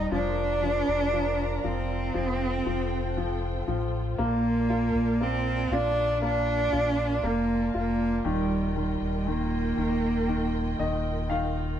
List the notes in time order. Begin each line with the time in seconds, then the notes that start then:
Already playing: G3 D#4
0.11 F1 F3 D4 F4 A#4 D5 A#5
0.62 F3
0.88 F1
1.13 F3
1.64 F1 F3 C4
2.14 F1 F3 A4 C5 G5
2.66 F1 F3
3.17 F3
3.67 A1 F3
4.18 A#1 A#3 A#4 D5 A5
4.70 F4
4.95 A#1
5.21 A#3 C4
5.71 A#1 D4 F4
6.22 A#3 D4
6.72 A#1 F4
7.23 F1 A#3
7.74 F1 A#3 F4
8.25 D#1 D#3 G3 D#5 G5
8.76 D#3 G3
9.01 D#1
9.27 D#3 A#3
9.77 D#1 D#3
10.28 D#3
10.79 D#1 D#3 D#5
11.29 D#3 F5